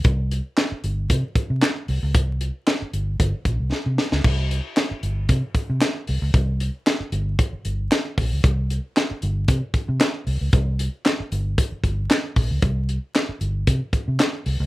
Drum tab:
CC |----------------|----------------|x---------------|----------------|
HH |x-x-x-x-x-x-x-o-|x-x-x-x-x-x-----|--x-x-x-x-x-x-o-|x-x-x-x-x-x-x-o-|
CP |----x-------x---|----x-----------|----x-------x---|----x-------x---|
SD |----o-------o---|----o-------o-oo|----o-------o---|----o-------o---|
BD |o-------o-o-----|o-------o-o-----|o-------o-o-----|o-------o-----o-|

CC |----------------|----------------|----------------|
HH |x-x-x-x-x-x-x-o-|x-x-x-x-x-x-x-o-|x-x-x-x-x-x-x-o-|
CP |----x-------x---|----x-------x---|----x-------x---|
SD |----o-------o---|----o-------o---|----o-------o---|
BD |o-------o-o-----|o-------o-o---o-|o-------o-o-----|